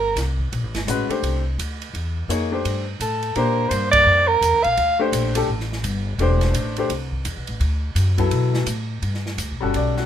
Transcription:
Already playing: upright bass G1, soprano saxophone A#4
0.16 upright bass C2, snare, hi-hat pedal, ride
0.39 kick
0.52 upright bass A#1, ride
0.63 upright bass A1
0.75 upright bass G1, snare, ride
0.87 upright bass A1, upright piano G#3 C#4 F#4 B4, hi-hat pedal, ride
1.09 upright piano A3 D4 G4 C5, muted upright bass stroke, ride
1.23 upright bass C2, ride
1.58 upright bass D2, hi-hat pedal, ride
1.82 ride
1.93 upright bass E2, ride
2.28 upright bass F2, upright piano A#3 D#4 G#4 C#5, hi-hat pedal, ride
2.52 upright piano A3 D4 G4 C5
2.65 upright bass G2, ride
3.00 upright bass A2, soprano saxophone A4, hi-hat pedal, ride
3.23 ride
3.35 upright bass A#2, upright piano A#3 D4 G4 C5, soprano saxophone A#4, ride
3.69 upright bass G2, soprano saxophone C5, hi-hat pedal, ride
3.91 soprano saxophone D5, kick, ride
4.06 upright bass F2
4.28 soprano saxophone A#4
4.41 upright bass E2, hi-hat pedal, ride
4.53 upright bass D2
4.63 upright bass A#1, soprano saxophone F5, ride
4.77 upright bass D2, ride
4.99 upright piano A3 D4 G4 C5
5.12 upright bass A#1, hi-hat pedal, ride
5.35 upright piano A3 D4 G4 A4, ride
5.48 upright bass A1
5.60 snare
5.72 snare
5.83 upright bass G1, hi-hat pedal, ride
6.18 upright bass E1, upright piano A3 D4 G4 C5, ride
6.41 snare, ride
6.54 upright bass A1, hi-hat pedal, ride
6.76 upright piano A3 D4 G4 C5, ride
6.89 upright bass C2, ride
7.12 kick
7.25 upright bass E2, hi-hat pedal, ride
7.37 upright bass C2
7.47 upright bass A1, ride
7.60 upright bass D2, ride
7.95 upright bass F#2, hi-hat pedal, ride
8.18 upright piano F#3 B3 E4 A4, kick, ride
8.31 upright bass B2, ride
8.54 snare
8.66 upright bass A2, hi-hat pedal, ride
9.02 upright bass G2, ride
9.14 snare
9.26 snare
9.38 upright bass D2, hi-hat pedal, ride
9.51 upright bass B1
9.60 upright bass G1, upright piano G3 C#4 F#4 A4
9.74 upright bass B1, upright piano D5, ride
9.97 upright piano F#4, snare

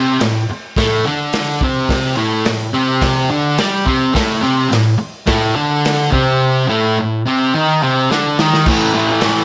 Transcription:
Already playing: distorted electric guitar C3 C4
0.20 distorted electric guitar A2, snare, open hi-hat
0.50 muted distorted electric guitar stroke
0.76 distorted electric guitar A2 A3, kick, snare, open hi-hat
1.06 distorted electric guitar D3 D4
1.33 snare, open hi-hat
1.61 distorted electric guitar C3 C4, kick
1.89 kick, snare, open hi-hat
2.17 distorted electric guitar A2 A3
2.45 distorted electric guitar A2, snare, open hi-hat
2.73 distorted electric guitar C3 C4
3.01 kick, snare, open hi-hat
3.30 distorted electric guitar D3 D4
3.58 distorted electric guitar G3 G4, snare, open hi-hat
3.85 distorted electric guitar C3 C4, kick
4.14 distorted electric guitar A2 A3, kick, snare, open hi-hat
4.42 distorted electric guitar C3 C4
4.70 distorted electric guitar A2, snare, open hi-hat
4.98 muted distorted electric guitar stroke
5.27 distorted electric guitar A2 A3, kick, snare, open hi-hat
5.56 distorted electric guitar D3 D4
5.85 snare, open hi-hat
6.12 distorted electric guitar C3 C4, kick
6.68 distorted electric guitar A2 A3
6.99 distorted electric guitar A2
7.26 distorted electric guitar C3 C4
7.54 distorted electric guitar D#3 D#4
7.83 distorted electric guitar C3 C4
8.10 distorted electric guitar D3 D4, snare
8.39 distorted electric guitar D#3 D#4, snare
8.54 snare
8.66 distorted electric guitar A2 E3, kick, crash
8.71 distorted electric guitar A3
8.94 distorted electric guitar A2 E3 A3
9.08 distorted electric guitar A3
9.12 distorted electric guitar E3
9.21 distorted electric guitar A2 E3, snare, open hi-hat
9.25 distorted electric guitar A3

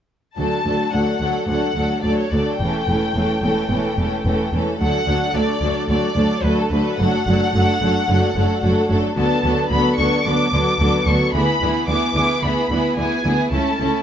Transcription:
0.37 cello section D2, double bass section D2, viola section F#3 A3, violin section D4 A4 A5
0.64 double bass section D2, cello section D2, viola section F#3 A3, violin section D4 A4
0.92 cello section D2, double bass section D2, viola section F#3 A3, violin section D4 A4 F#5
1.20 cello section D2, double bass section D2, viola section F#3 A3, violin section D4 A4
1.48 cello section D2, double bass section D2, viola section F#3 A3, violin section D4 A4 F#5
1.75 cello section D2, double bass section D2, viola section F#3 A3, violin section D4 A4
2.03 cello section D2, double bass section D2, viola section F#3 A3, violin section D4 A4 D5
2.18 violin section C#5
2.30 double bass section D2, cello section D2, viola section F#3 A3, violin section D5
2.34 violin section D4 A4
2.58 double bass section E1, cello section E2, viola section E3 A3, violin section G5
2.64 violin section C#4 A4
2.88 double bass section E1, cello section E2, viola section E3 A3, violin section C#4 A4
3.15 double bass section E1, cello section E2, viola section E3 A3, violin section C#4 A4
3.42 double bass section E1, cello section E2, viola section E3 A3, violin section C#4 A4
3.69 double bass section E1, cello section E2, viola section E3 A3, violin section C#4 A4
3.97 double bass section E1, cello section E2, viola section E3 A3, violin section C#4 A4
4.25 double bass section E1, cello section E2, viola section E3 A3, violin section C#4 A4
4.52 double bass section E1, cello section E2, viola section E3 A3, violin section C#4 A4
4.79 cello section D2, double bass section D2, viola section F#3 A3, violin section D4 A4 F#5
5.06 double bass section D2, cello section D2, viola section F#3 A3, violin section D4 A4
5.33 double bass section D2, cello section D2, viola section F#3 A3, violin section D4 A4 D5
5.60 double bass section D2, cello section D2, viola section F#3 A3, violin section D4 A4
5.88 double bass section D2, cello section D2, viola section F#3 A3, violin section D4 A4 D5
6.15 double bass section D2, cello section D2, viola section F#3 A3, violin section D4 A4
6.42 double bass section D2, cello section D2, viola section F#3 A3, violin section D4 A4 B4
6.58 violin section A4
6.70 double bass section D2, cello section D2, viola section F#3 A3, violin section D4 A4 B4
6.98 double bass section F#1, cello section F#2, viola section F#3 A3, violin section D4 A4 F#5
7.27 double bass section F#1, cello section F#2, viola section F#3 A3, violin section D4 A4
7.53 double bass section F#1, cello section F#2, viola section F#3 A3, violin section D4 A4
7.80 double bass section F#1, cello section F#2, viola section F#3 A3, violin section D4 A4
8.08 double bass section F#1, cello section F#2, viola section F#3 A3, violin section D4 A4
8.36 double bass section F#1, cello section F#2, viola section F#3 A3, violin section D4 A4
8.63 double bass section F#1, cello section F#2, viola section F#3 A3, violin section D4 A4
8.88 double bass section F#1, cello section F#2, viola section F#3 A3, violin section D4 A4
9.15 double bass section D2, cello section D3, viola section F#3 B3, violin section D4 A4 A5
9.43 double bass section D2, cello section D3, viola section F#3 B3, violin section D4 A4
9.71 double bass section D2, cello section D3, viola section F#3 B3, violin section D4 A4 B5
9.97 double bass section D2, cello section D3, viola section F#3 B3, violin section D4 A4 C#6
10.24 double bass section D2, cello section D3, viola section F#3 B3, violin section D4 A4 D6
10.52 double bass section D2, cello section D3, viola section F#3 B3, violin section D4 A4
10.79 double bass section D2, cello section D3, viola section F#3 B3, violin section D4 A4
11.04 double bass section D2, cello section D3, viola section B3, violin section D4 A4 C#6
11.09 viola section F#3
11.32 double bass section D2, cello section D3, viola section E3 B3, violin section E4 G#4 B5
11.61 double bass section D2, cello section D3, viola section E3 B3, violin section E4 G#4
11.87 double bass section D2, cello section D3, viola section E3 B3, violin section E4 G#4 D6
12.14 double bass section D2, cello section D3, viola section E3 B3, violin section E4 G#4
12.42 double bass section D2, cello section D3, viola section E3 B3, violin section E4 G#4 B5
12.70 double bass section D2, cello section D3, viola section E3 B3, violin section E4 G#4
12.96 double bass section D2, cello section D3, viola section E3 B3, violin section E4 G#4 G#5
13.24 double bass section D2, cello section D3, viola section E3 B3, violin section E4 G#4
13.52 double bass section C#2, cello section C#3, viola section A3 C#4, violin section E4 A4 A5
13.79 double bass section C#2, cello section C#3, viola section A3 C#4, violin section E4 A4

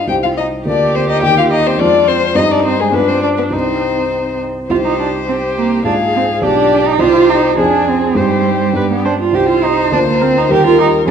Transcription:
Already playing: grand piano G2 G3 D4 D5
0.07 grand piano C2 G3 D#4 C5, cello G4, violin G5
0.23 cello F4, violin F5
0.37 cello D#4, violin D#5
0.65 grand piano D2 A#3 F4 A#4, cello D4, viola G4, violin D5
0.95 cello C4, violin C5
1.10 cello D#4, violin D#5
1.22 grand piano D#2 A#3 D#4 A#4, cello G4, violin G5
1.38 cello F4, violin F5
1.51 cello D#4, violin D#5
1.66 cello C4, violin C5
1.77 grand piano F2 G#3 C4 F4, cello D4, viola F4, violin D5
2.08 cello C4, violin C5
2.35 grand piano G2 G3 C4 D#4, viola D#4, cello D#4, violin D#5
2.51 cello D4, violin D5
2.65 cello C4, violin C5
2.80 cello G#3, violin G#4
2.92 grand piano G2 G3 D4 F4, cello B3, viola D4, violin B4
3.08 cello C4, violin C5
3.22 cello D4, violin D5
3.37 cello B3, violin B4
3.50 grand piano C2 G3 C4 D#4, cello C4, viola D#4, violin C5
4.69 grand piano C2 G3 C4 D#4, cello F4, viola G4, violin C5
4.85 cello D#4
4.99 cello D4
5.28 cello C4, viola G4
5.58 cello A#3
5.84 grand piano G#2 G#3 F4 G#4, cello D4, viola G#4, violin F5
6.15 cello C4
6.41 grand piano B1 D4 F4 G4, cello D4, viola G4, violin D5
6.86 cello D#4
6.99 grand piano C2 C4 D#4 G4, cello F4, viola G4, violin C5
7.30 cello D#4
7.57 grand piano F2 C4 F4 G#4, cello D4, violin G#4, viola G#4
7.88 cello C4
8.15 grand piano G2 C4 D#4 G4, cello G3, violin G4, viola C5
8.73 grand piano G2 B3 D4 G4, viola B4
8.91 cello B3
9.05 cello D4, viola C5
9.20 cello F4
9.33 grand piano C2 C4 D#4 G4, cello G4, violin C5
9.49 cello F4
9.64 cello D#4, viola C5
9.91 grand piano D2 A#3 F4 A#4, cello D4
10.08 cello A#3
10.22 cello C4, viola A#4
10.37 cello D#4
10.49 grand piano D#2 G3 G4 A#4, cello G4, violin A#4
10.66 cello F4
10.79 cello D#4, viola G4
11.06 grand piano F2 C4 F4 G#4

